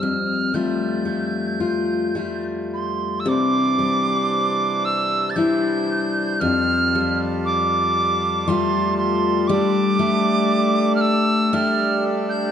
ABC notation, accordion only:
X:1
M:3/4
L:1/8
Q:1/4=58
K:C
V:1 name="Accordion"
z6 | [Dc]6 | [FA]6 | [DA]6 |]
V:2 name="Accordion" clef=bass
z6 | E,6 | G,6- | G,6 |]